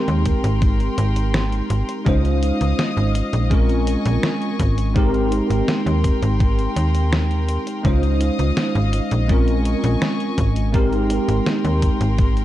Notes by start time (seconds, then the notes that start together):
Already playing: G#3 C4 D#4 G4 A#4 G5 C6
0.08 D#2, closed hi-hat
0.26 kick, closed hi-hat
0.44 G#1, closed hi-hat
0.62 kick, closed hi-hat
0.80 closed hi-hat
0.98 G#1, closed hi-hat
1.16 closed hi-hat
1.34 snare, closed hi-hat
1.52 closed hi-hat
1.70 G#1, closed hi-hat
1.89 closed hi-hat
2.05 C#2 G#3 C#4 D#4 F4 C5 D#5 F5 D#6, kick, closed hi-hat
2.25 closed hi-hat
2.43 closed hi-hat
2.61 C#2, closed hi-hat
2.79 snare, closed hi-hat
2.97 G#1, closed hi-hat
3.15 closed hi-hat
3.33 A#1, closed hi-hat
3.50 G#3 C4 C#4 F4 A#4 G#5 C#6, kick, closed hi-hat
3.69 closed hi-hat
3.87 closed hi-hat
4.05 A#1, closed hi-hat
4.23 snare, closed hi-hat
4.42 closed hi-hat
4.59 G#1, kick, closed hi-hat
4.78 closed hi-hat
4.94 G#3 C4 D#4 G4 A#4 G5 C6, kick, closed hi-hat
5.14 closed hi-hat
5.32 closed hi-hat
5.50 G#1, closed hi-hat
5.68 snare, closed hi-hat
5.86 D#2, closed hi-hat
6.04 kick, closed hi-hat
6.22 G#1, closed hi-hat
6.40 kick, closed hi-hat
6.59 closed hi-hat
6.76 D#2, closed hi-hat
6.95 closed hi-hat
7.13 snare, closed hi-hat
7.31 closed hi-hat
7.49 closed hi-hat
7.67 closed hi-hat
7.83 C#2 G#3 C#4 D#4 F4 C5 D#5 F5 D#6, kick, closed hi-hat
8.03 closed hi-hat
8.21 closed hi-hat
8.39 C#2, closed hi-hat
8.57 snare, closed hi-hat
8.75 G#1, closed hi-hat
8.93 closed hi-hat
9.11 A#1, closed hi-hat
9.28 G#3 C4 C#4 F4 A#4 G#5 C#6, kick, closed hi-hat
9.48 closed hi-hat
9.65 closed hi-hat
9.84 A#1, closed hi-hat
10.02 snare, closed hi-hat
10.20 closed hi-hat
10.38 G#1, kick, closed hi-hat
10.56 closed hi-hat
10.73 G#3 C4 D#4 G4 A#4 G5 C6, kick, closed hi-hat
10.93 closed hi-hat
11.10 closed hi-hat
11.28 G#1, closed hi-hat
11.46 snare, closed hi-hat
11.65 D#2, closed hi-hat
11.82 kick, closed hi-hat
12.01 G#1, closed hi-hat
12.18 kick, closed hi-hat
12.37 closed hi-hat